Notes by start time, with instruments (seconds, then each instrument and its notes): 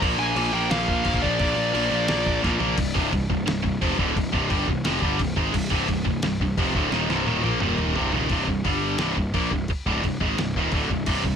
0.01 picked electric bass A#1, distorted electric guitar A#2 F3 A#3, kick, crash
0.18 picked electric bass A#1, lead electric guitar G#5
0.36 picked electric bass A#1, distorted electric guitar A#2 F3 A#3, crash
0.53 picked electric bass A#1, distorted electric guitar A#2 F3 A#3, lead electric guitar G5
0.70 picked electric bass A#1, distorted electric guitar A#2 F3 A#3, lead electric guitar F5, snare, crash
0.88 picked electric bass A#1, kick
1.05 picked electric bass A#1, distorted electric guitar A#2 F3 A#3, kick, crash
1.14 kick
1.22 picked electric bass A#1, distorted electric guitar A#2 F3 A#3, lead electric guitar D5, kick
1.39 picked electric bass A#1, distorted electric guitar A#2 F3 A#3, kick, crash
1.56 picked electric bass A#1
1.73 picked electric bass A#1, distorted electric guitar A#2 F3 A#3, crash
1.90 picked electric bass A#1, distorted electric guitar A#2 F3 A#3
2.07 picked electric bass A#1, distorted electric guitar A#2 F3 A#3, snare, crash
2.26 kick
2.42 picked electric bass A#1, distorted electric guitar A#2 F3 A#3, kick, snare
2.59 picked electric bass A#1, distorted electric guitar A#2 F3 A#3, floor tom
2.77 picked electric bass C1, distorted electric guitar C2 G2, kick, crash
2.94 picked electric bass C1, distorted electric guitar C2 G2 C3, kick
3.12 picked electric bass C1, distorted electric guitar C2 G2, kick, crash
3.29 picked electric bass C1, distorted electric guitar C2 G2, kick
3.46 picked electric bass C1, distorted electric guitar C2 G2, snare, crash
3.63 picked electric bass C1, distorted electric guitar C2 G2, kick
3.81 picked electric bass F1, distorted electric guitar F2 C3 F3, kick, crash
3.98 picked electric bass D1, distorted electric guitar D2 A2 D3, kick
4.16 picked electric bass C1, distorted electric guitar C2 G2, kick, crash
4.32 picked electric bass C1, distorted electric guitar C2 G2 C3, kick
4.49 picked electric bass G1, distorted electric guitar G2 D3 G3, kick, crash
4.67 picked electric bass C1, distorted electric guitar C2 G2, kick
4.85 picked electric bass F1, distorted electric guitar F2 C3 F3, snare, crash
5.02 picked electric bass G1, distorted electric guitar G2 D3 G3, kick
5.19 picked electric bass C1, distorted electric guitar C2 G2, kick, crash
5.36 picked electric bass G#1, distorted electric guitar G#2 D#3 G#3, kick
5.53 picked electric bass C1, distorted electric guitar C2 G2, kick, crash
5.70 picked electric bass C1, distorted electric guitar C2 G2 C3, kick
5.88 picked electric bass C1, distorted electric guitar C2 G2, kick, crash
6.04 picked electric bass C1, distorted electric guitar C2 G2, kick
6.22 picked electric bass C1, distorted electric guitar C2 G2, snare, crash
6.40 picked electric bass C1, distorted electric guitar C2 G2, kick
6.57 picked electric bass F1, distorted electric guitar F2 C3 F3, kick, crash
6.74 picked electric bass D1, distorted electric guitar D2 A2 D3, kick
6.92 picked electric bass D#1, distorted electric guitar D#2 A#2 D#3, snare
7.09 picked electric bass C1, distorted electric guitar C2 G2 C3, snare
7.26 picked electric bass D#1, distorted electric guitar D#2 A#2 D#3, high tom
7.44 picked electric bass A#1, distorted electric guitar A#2 F3 A#3, high tom
7.60 picked electric bass D#1, distorted electric guitar D#2 A#2 D#3, mid tom
7.78 mid tom
7.96 picked electric bass C1, distorted electric guitar C2 G2 C3, floor tom
8.12 picked electric bass D#1, distorted electric guitar D#2 A#2 D#3, floor tom
8.30 picked electric bass C1, distorted electric guitar C2 G2 C3, kick, crash
8.47 picked electric bass C1, distorted electric guitar C2 G2, kick
8.64 picked electric bass G1, distorted electric guitar G2 D3 G3, kick, crash
8.98 picked electric bass C1, distorted electric guitar C2 G2 C3, snare, crash
9.17 picked electric bass C1, distorted electric guitar C2 G2, kick
9.34 picked electric bass A#1, distorted electric guitar A#2 F3 A#3, kick, crash
9.51 picked electric bass C1, distorted electric guitar C2 G2, kick
9.68 muted picked electric bass stroke, muted distorted electric guitar stroke, kick, crash
9.86 picked electric bass D1, distorted electric guitar D2 A2 D3, kick
10.04 picked electric bass C1, distorted electric guitar C2 G2, kick, crash
10.20 picked electric bass G#1, distorted electric guitar G#2 D#3 G#3, kick
10.37 picked electric bass C1, distorted electric guitar C2 G2, snare, crash
10.55 picked electric bass D#1, distorted electric guitar D#2 A#2 D#3, kick
10.72 picked electric bass D1, distorted electric guitar D2 A2 D3, kick, crash
10.90 picked electric bass C1, distorted electric guitar C2 G2, kick
11.06 picked electric bass C1, distorted electric guitar C2 G2 C3, kick, crash
11.23 picked electric bass C1, distorted electric guitar C2 G2, kick